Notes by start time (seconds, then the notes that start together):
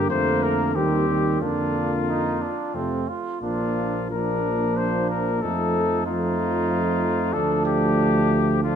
Already playing: G2 A#3
0.10 F2 D3 A3 A#3 C5
0.43 A#4
0.75 D#2 D#3 G3 C4 G4
1.08 D#3
1.41 F2 D3 A#3 D4 F4
2.09 D#4
2.41 D4
2.74 F2 C3 A3 C4
3.09 F4
3.41 A#1 F3 A#3 D4 F4
4.11 F3 A#3 D4 A#4
4.77 C5
5.10 A#4
5.42 F2 F3 A3 D#4 A4
6.06 F3 A3 D#4 F4
7.33 D2 F3 A3 D4 A4
7.66 G4
8.63 F3 A3 D4 F4